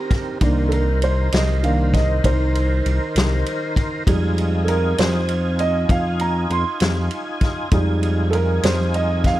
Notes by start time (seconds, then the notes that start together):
Already playing: D#3 A#3 C4 D4 D#4 G4 A#4
0.11 kick, snare, ride
0.41 C2 D#3 A#3 D4 A#4 C5, kick, ride
0.69 A4, ride
0.73 A#4
1.02 C5, ride
1.32 C2 D#5, snare, ride
1.63 D#3 A#3 D4 F5, ride
1.94 D#5, kick, snare, ride
2.24 C2 D#4 C5, kick, ride
2.55 ride
2.85 C2, ride
3.15 C2, snare, ride
3.46 ride
3.76 kick, ride
4.06 F2 G3 G#3 D#4 F4 G#5, kick, ride
4.38 ride
4.64 A4, ride
4.68 A#4
4.98 F2 C5, snare, ride
5.28 ride
5.59 D#5, ride
5.89 F2 F5, kick, ride
6.19 A#5, ride
6.50 F2 C6, ride
6.80 F2, snare, ride
7.11 ride
7.41 kick, snare, ride
7.71 F2 G3 G#3 D#4 F4 G#5, kick, ride
8.03 ride
8.31 A4, ride
8.35 A#4
8.63 F2 C5, snare, ride
8.94 D#5, ride
9.24 F5, kick, snare, ride